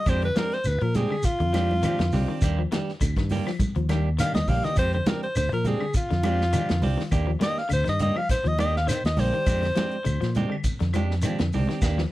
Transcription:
Already playing: D#5
0.06 F2 G#3 C4 D4 G4 C5, kick, closed hi-hat, claves, shekere
0.22 D3 B4, closed hi-hat
0.36 F3 G#3 C4 D4 G4 A#4, snare, closed hi-hat, high conga, shekere
0.52 C5, snare, closed hi-hat
0.64 D2 B4, closed hi-hat, claves, shekere
0.81 A#2 F3 A#4, closed hi-hat
0.94 G#3 C4 D4 G4 G#4, closed hi-hat, high conga, low conga, shekere
1.11 D3, claves
1.23 F4, kick, closed hi-hat, shekere
1.40 F2 D3, closed hi-hat
1.53 F3 G#3 C4 D4 G4, snare, closed hi-hat, high conga, claves, shekere
1.71 high conga
1.83 D#3 F3 G#3 C4 D4 G4, closed hi-hat, claves, shekere
1.99 F2 D3, snare, closed hi-hat
2.12 C2 G#3 C4 D4 G4, snare, open hi-hat, high conga, low conga, shekere
2.28 D#3 C4 D4 G4
2.41 D#2 G3 A#3 D4 G4, kick, closed hi-hat, claves, shekere
2.59 F3
2.72 D#3 G3 D4 G4, snare, closed hi-hat, high conga, shekere
2.89 snare
3.01 D2 D3, kick, closed hi-hat, claves, shekere
3.16 G2 D#3, kick, snare, closed hi-hat
3.29 G3 A#3 D4 G4, open hi-hat, high conga, low conga, shekere
3.47 F3, snare, claves
3.59 kick, closed hi-hat, high conga, shekere
3.75 D#2 F3, closed hi-hat
3.89 D#3 G3 A#3 D4 G4, snare, closed hi-hat, high conga, claves, shekere
4.18 D#3 G3 A#3 D4 G4 F5, snare, closed hi-hat, claves, shekere
4.34 D#2 D3 D#5, snare, closed hi-hat, high conga
4.48 A#1 G3 A#3 D4 G4 F5, kick, open hi-hat, low conga, shekere
4.64 D#3 A#3 D4 G4 D#5, muted fingered electric bass stroke, snare, closed hi-hat, low conga
4.76 F2 G#3 C4 G4 C5, muted clean electric guitar stroke, kick, closed hi-hat, claves, shekere
4.93 D3 C5, closed hi-hat
5.06 F3 G#3 C4 D4 G4 A#4, snare, closed hi-hat, high conga, low conga, shekere
5.23 C5, closed hi-hat
5.36 D2 D3 C5, closed hi-hat, claves, shekere
5.52 A#2 F3 A#4, closed hi-hat
5.65 G#3 C4 D4 G4 G#4, closed hi-hat, high conga, low conga, shekere
5.80 D3, claves
5.94 F4, kick, closed hi-hat, shekere
6.10 F2 D3, snare, closed hi-hat
6.23 F3 G#3 C4 D4 G4, closed hi-hat, high conga, claves, shekere
6.41 snare
6.52 D#3 F3 G#3 D4 G4, muted clean electric guitar stroke, closed hi-hat, claves, shekere
6.69 F2 D3, snare, closed hi-hat
6.82 C2 C4 D4 G4, muted clean electric guitar stroke, open hi-hat, high conga, low conga, shekere
6.98 D#3, snare
7.11 D#2 A#3 D4 G4, kick, closed hi-hat, claves, shekere
7.27 F3
7.40 D#3 A#3 D4 G4 D#5, snare, closed hi-hat, high conga, shekere
7.57 F5, snare
7.69 D2 D3, closed hi-hat, claves, shekere
7.73 C5
7.84 G2 D#3, snare, closed hi-hat
7.89 D#5
7.99 A#3 D4 G4 D#5, closed hi-hat, high conga, low conga, shekere
8.16 F3 F5, claves
8.29 C5, kick, snare, closed hi-hat, shekere
8.44 D#2 F3 D#5, closed hi-hat
8.59 D#3 A#3 D4 G4 D#5, closed hi-hat, high conga, claves, shekere
8.76 F5, snare
8.87 D#3 C5, snare, closed hi-hat, claves, shekere
9.04 D#2 D#5, snare, closed hi-hat
9.17 A#1 A#3 D4 G4 C5, snare, open hi-hat, high conga, low conga, shekere
9.34 D#3 D4 G4, closed hi-hat
9.46 F2 G#3 C4 D4 G4, kick, closed hi-hat, claves, shekere
9.62 D3, snare, closed hi-hat
9.75 F3 G#3 C4 D4 G4, snare, closed hi-hat, high conga, shekere
9.91 closed hi-hat
10.04 D2 D3, closed hi-hat, claves, shekere
10.21 A#2 F3, snare, closed hi-hat
10.35 G#3 C4 D4 G4, closed hi-hat, high conga, low conga, shekere
10.50 D3, claves
10.64 kick, closed hi-hat, shekere
10.80 F2 D3, snare, closed hi-hat
10.94 F3 G#3 D4 G4, closed hi-hat, high conga, claves, shekere
11.11 snare
11.22 D#3 F3 G#3 C4 D4 G4, closed hi-hat, claves, shekere
11.38 F2 D3, snare, closed hi-hat
11.52 C2 G#3 C4 D4 G4, open hi-hat, high conga, low conga, shekere
11.69 D#3 C4 D4 G4, snare
11.82 D#2 A#3 D4 G4, kick, snare, claves, shekere
11.98 F3, snare

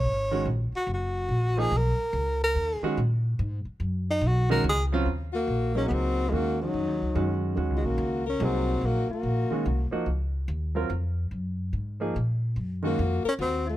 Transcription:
Already playing: C#5
0.04 G#1
0.31 D#3 G#3 C#4 F#4
0.45 A#1
0.72 F#4, muted upright bass stroke
0.87 F#1
0.94 F#4
1.28 A#1
1.57 F3 A#3 D#4 G#4
1.71 B1
1.77 A#4
2.13 C#2
2.43 A#4
2.55 D#2
2.82 D#3 G#3 C#4 F#4, muted upright bass stroke
2.97 A#2
3.39 G#2
3.65 muted upright bass stroke
3.80 F#2
4.11 D#4
4.21 B1
4.27 F#4
4.50 D#3 G#3 C#4 F#4 A#4
4.64 C#2
4.69 G#4
4.92 C#3 F#3 C4 F4
5.06 D#2
5.33 A#3 F#4
5.47 A#1
5.75 F#3 A#3 C#4 D#4 G#4 A#4
5.85 B3 F#4
5.90 C#2 C4 F#4
6.28 G#3 F4
6.32 D#2 D#3 G#3 A#3 C#4 F#4
6.61 F#3 D#4
6.74 F2
6.88 D#2
7.02 C#2
7.15 F#2 D#3 G#3 C#4 F#4
7.56 D#2 D#3 G#3 C#4 F#4
7.70 C#2
7.75 G#3 F4
7.83 A#1 A#3 F#4
7.98 C#2
8.26 C#4 A#4
8.40 C2 F#3 A#3 D#4 F#4 G#4
8.44 C4
8.81 A#1 F#4
8.86 A#3
9.09 F#4, muted upright bass stroke
9.13 A#3
9.23 A#1
9.51 D#3 G#3 C#4 F#4, muted upright bass stroke
9.66 C2
9.91 F3 A#3 D#4 F#4, muted upright bass stroke
10.06 C#2
10.48 D#2
10.75 F#3 C4 F4 A#4
10.90 F2
11.31 F#2
11.73 G#2
12.00 F3 A#3 D#4 G#4
12.16 A#2
12.56 F#2
12.83 D#3 G#3 A#3 C#4 F#4
12.99 F2
13.25 C#4 A#4, muted upright bass stroke
13.39 D#2 C4 F#4
13.67 A#3 F#4

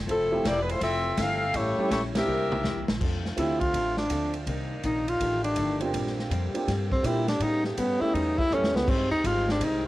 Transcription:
0.06 F1 F3 A3 C4 E4 A4, kick, ride
0.31 F3 A3 C4 E4 G4
0.43 E1 F3 A3 A#3 C4 E4 G4 D5, kick, snare, hi-hat pedal, ride
0.62 B4
0.69 A3 E4 F4 C5, ride
0.81 F1 F3 A3 C4 E4 F4 A4 E5, kick, ride
1.17 G1 F3 A3 C4 E4 A4 E5 F5, kick, snare, hi-hat pedal, ride
1.53 A1 A2 G3 A3 C#4 E4 G4 C#5, kick, ride
1.78 G3 A3 C#4 E4 G4, muted upright bass stroke
1.90 A#1 A2 G3 A3 C#4 E4 G4 C#5, kick, snare, hi-hat pedal, ride
2.15 A#3 C4 D4 E4 G4 A#4 E5, snare, ride
2.26 C2 C3 G3 A#3 E4
2.52 mid tom
2.63 E2 C3 G3 A#3 E4, snare, hi-hat pedal
2.76 C2
2.88 A#1, snare
3.00 F2 F3 A3 C4 D4 F4 A4, kick, crash
3.25 snare
3.36 D2 F3 A3 C4 D4 E4 F4 G4 A4, kick, hi-hat pedal, ride
3.60 F4, kick, ride
3.74 A1 F3 C4 D4 A4, kick, ride
3.97 D4, snare
4.10 D2 F3 C4 D4 A4, kick, hi-hat pedal, ride
4.34 ride
4.46 C2 C3 D#3 A#3 D4 D#4, kick, ride
4.83 A#1 C3 D#3 A#3 D4 D#4, kick, hi-hat pedal, ride
5.08 F4, ride
5.20 A1 F2 D#3 A3 D4 G4, kick, ride
5.44 D4, ride
5.56 G1 F2 D#3 A3 D4, kick, hi-hat pedal, ride
5.81 A#3 C4 D4 F4 G4, ride
5.92 A#1 A#2 D3 G3 A#3 C4, kick, ride
5.96 D4
6.07 snare
6.19 snare
6.30 F2 A#2 G3 C4 D4, kick, hi-hat pedal, ride
6.54 A#3 C4 D4 F4 G4, ride
6.68 G2 A#2 G3 C4 D4, kick, snare, ride
6.92 C4, kick
7.03 A#2 G3 A#3 C4 D4 E4 F4 G4, kick, hi-hat pedal, ride
7.28 D4, snare, ride
7.39 A2 C#3 G3 A3 B3 D#4, kick, ride
7.44 C#4
7.64 G3, snare
7.77 G2 A2 G3 B3 C#4, kick, hi-hat pedal, ride
8.01 A3 B3 C#4 E4 G4, muted upright bass stroke
8.14 E2 A2 G3 B3 C#4 D#4, kick, ride
8.38 E4, kick
8.50 F#2 A2 G3 A3 B3 C#4 E4 A4, hi-hat pedal
8.62 E2, snare
8.74 C#2 B3, snare
8.87 G#2 D#3 G3 G#3 C4 D#4, kick, crash
8.98 G2
9.10 D#2 D#4
9.24 G#1 G#2 G3 C4 D#4 F4, kick, hi-hat pedal, ride
9.49 D4, snare
9.59 C2 G#2 G3 C4 D#4, kick, ride
9.65 D#4

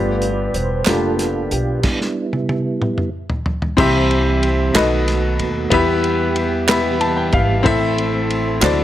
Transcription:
Already playing: G1 G2 A3 B3 D4 F4 G4 B4 D5
0.22 closed hi-hat
0.54 E1 C5, closed hi-hat
0.84 F1 A3 A#3 B3 D4 F4 G4 A4, snare, clap, closed hi-hat
0.91 B3
1.19 snare, closed hi-hat
1.51 B1 G4, closed hi-hat
1.83 G3 B3 D4 E4, kick, snare, crash
2.01 snare
2.33 high tom
2.49 high tom
2.82 mid tom
2.98 mid tom
3.30 floor tom
3.46 floor tom
3.62 floor tom
3.77 C2 C3 E3 G3 C4 E4 G4 C5 E5, kick, crash
4.11 ride bell
4.43 ride bell
4.74 B1 B2 D#3 A3 B3 D#4 F#4 A4 B4 D#5, snare, clap, ride bell
5.08 snare, ride bell
5.39 D#2, ride bell
5.70 E2 E3 G3 B3 E4 G4 B4 E5, kick, ride bell
6.04 ride bell
6.36 ride bell
6.68 B3 E4 G4 B4 E5, snare, clap, ride bell
7.01 A5, ride bell
7.17 G5
7.32 G#1 F5, kick, ride bell
7.63 A1 A2 C4 E4 A4 C5 E5, kick, ride bell
7.67 A3 C4
7.98 ride bell
8.30 ride bell
8.60 D2 D3 F#3 C4 E4 F#4 A4 C5 D5, snare, clap, ride bell
8.64 E4

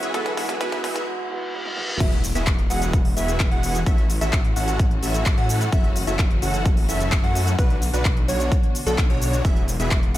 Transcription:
Already playing: E3 G#3 B3 C#4 F#4 C#5 E5, riser
0.03 B3 E4 F#4 G#4 E5, closed hi-hat
0.13 D3 E3 F#3 G#3 B3 E4 F#4 G#4 A4 B4 E5, kick, closed hi-hat
0.26 kick, closed hi-hat
0.36 E3 G#3 B3 E4 F#4 G#4 E5, kick, open hi-hat
0.49 kick, closed hi-hat
0.60 E3 G#3 B3 E4 F#4 G#4 B4 E5, kick, closed hi-hat
0.72 kick, closed hi-hat
0.83 E3 G#3 B3 E4 F#4 G#4 E5, kick, open hi-hat
0.96 kick, closed hi-hat
1.06 E3 G#3 B3 F#4, reverse cymbal
1.29 E3 G#3 B3 F#4
1.53 E3 G#3 B3 F#4
1.66 high tom
1.76 E3 G#3 B3 F#4, mid tom
1.89 mid tom
2.00 E1 E3 F#3 B3 E4 F#4 G#4 E5, kick, closed hi-hat, crash, impact, shaker
2.12 closed hi-hat
2.24 open hi-hat, shaker
2.35 E1 B3 E4 F#4 G#4 E5, closed hi-hat, shaker
2.47 kick, clap, closed hi-hat, shaker
2.59 closed hi-hat
2.70 E1 B3 E4 F#4 G#4 F#5, open hi-hat, shaker
2.82 closed hi-hat, shaker
2.93 kick, closed hi-hat, shaker
3.05 open hi-hat
3.17 E1 B3 E4 F#4 G#4 E5, open hi-hat, shaker
3.28 closed hi-hat, shaker
3.40 kick, clap, closed hi-hat, shaker
3.51 E1 B3 E4 F#4 G#4 F#5, closed hi-hat
3.63 open hi-hat, shaker
3.75 closed hi-hat, shaker
3.86 A1 A3 C#4 E4 F#4 A4 E5, kick, closed hi-hat, shaker
3.98 closed hi-hat
4.10 open hi-hat, shaker
4.21 A1 C#4 E4 F#4 A4 E5, closed hi-hat, shaker
4.33 kick, clap, closed hi-hat, shaker
4.44 closed hi-hat
4.56 A1 C#4 E4 F#4 A4 F#5, open hi-hat, shaker
4.68 closed hi-hat, shaker
4.79 kick, closed hi-hat, shaker
4.91 closed hi-hat
5.03 A1 C#4 E4 F#4 A4 E5, open hi-hat, shaker
5.14 closed hi-hat, shaker
5.26 kick, clap, closed hi-hat, shaker
5.38 A2 C#4 E4 F#4 A4 F#5, closed hi-hat
5.49 open hi-hat, shaker
5.61 closed hi-hat, shaker
5.72 F#1 E3 A3 C#4 E4 F#4 A4 E5, kick, closed hi-hat, shaker
5.84 closed hi-hat
5.96 open hi-hat, shaker
6.07 F#1 C#4 E4 F#4 A4 E5, closed hi-hat, shaker
6.19 kick, clap, closed hi-hat, shaker
6.31 closed hi-hat
6.42 F#1 C#4 E4 F#4 A4 F#5, open hi-hat, shaker
6.54 closed hi-hat, shaker
6.66 kick, closed hi-hat, shaker
6.77 open hi-hat
6.89 F#1 C#4 E4 F#4 A4 E5, open hi-hat, shaker
7.00 closed hi-hat, shaker
7.12 kick, clap, closed hi-hat, shaker
7.24 F#2 C#4 E4 F#4 A4 F#5, closed hi-hat
7.35 open hi-hat, shaker
7.47 closed hi-hat, shaker
7.58 B1 B2 D3 D4 F#4 B4, kick, closed hi-hat, shaker
7.70 closed hi-hat
7.82 open hi-hat, shaker
7.93 B1 D4 F#4 B4, closed hi-hat, shaker
8.05 kick, clap, closed hi-hat, shaker
8.17 closed hi-hat
8.28 B1 D4 F#4 C#5, open hi-hat, shaker
8.40 closed hi-hat, shaker
8.52 kick, closed hi-hat, shaker
8.63 closed hi-hat
8.75 open hi-hat, shaker
8.87 B1 D4 F#4 A4, closed hi-hat, shaker
8.98 kick, clap, closed hi-hat, shaker
9.10 B1 D4 F#4 C#5, closed hi-hat
9.22 open hi-hat, shaker
9.33 closed hi-hat, shaker
9.45 E1 E3 G#3 B3 E4 F#4 G#4 E5, kick, closed hi-hat, shaker
9.56 closed hi-hat
9.68 open hi-hat, shaker
9.80 E1 B3 E4 F#4 G#4 E5, closed hi-hat, shaker
9.91 kick, clap, closed hi-hat, shaker
10.03 closed hi-hat
10.14 E1 B3 E4 F#4 G#4 F#5, open hi-hat

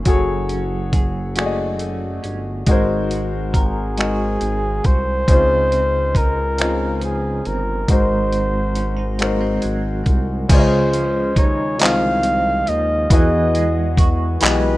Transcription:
Already playing: C#4 G#4 C5
0.04 F#1 F#3 F#4 G#4 A4, kick, closed hi-hat
0.09 C#5
0.49 C#4, closed hi-hat
0.93 G#4, kick, closed hi-hat
1.36 F#3 A3 C#4 F#4 G#4 D5, finger snap, closed hi-hat
1.46 D#5
1.79 A3, closed hi-hat
2.23 G1 C#4, closed hi-hat
2.66 G#1 G#3 D#4 F#4 A#4, kick, closed hi-hat
2.71 C5
3.10 F#4, closed hi-hat
3.53 G#4 A#4, kick, closed hi-hat
3.97 G#3 D#4 F#4 A#4, finger snap, closed hi-hat
4.01 D#5
4.40 G#1 C4, closed hi-hat
4.84 C2 F#4 C5, kick, closed hi-hat
5.28 C#2 C#3 C4 D#4 F4, kick, closed hi-hat
5.33 C5
5.71 C4, closed hi-hat
6.14 D#4 A#4, kick, closed hi-hat
6.58 C#3 C4 D#4 F4, finger snap, closed hi-hat
6.62 D#5
7.01 F3 G#4, closed hi-hat
7.45 G1 C4 A#4, closed hi-hat
7.88 G#1 G#2 G#3 D#4 F#4 A#4 C5, kick, closed hi-hat
8.32 C4, closed hi-hat
8.75 C#4, closed hi-hat
8.96 D#4
9.18 G#3 A#3 D#4 F#4 A#4, finger snap, closed hi-hat
9.22 C5
9.40 C4
9.62 G#1 F#3, closed hi-hat
10.04 C2 C4, kick, closed hi-hat
10.48 C#2 C#3 G#3 F4 C5, kick, closed hi-hat, crash
10.52 C5 D5
10.60 D#5
10.92 F3, closed hi-hat
11.35 D#2 D#4 C#5, kick, closed hi-hat
11.78 C2 D#3 F3 G#3 F4 C5 F5, closed hi-hat
11.83 D#5, clap
12.23 C4, closed hi-hat
12.66 D#2 F3 D#5, closed hi-hat
13.10 E2 E3 B3 F#4 G#4 D#5, kick, closed hi-hat
13.14 D#5
13.54 G#3, closed hi-hat
13.97 F#4, kick, closed hi-hat
14.40 B1 E3 G#3 B3 F#4 G4 B4, clap, closed hi-hat
14.44 D#5
14.50 G#4

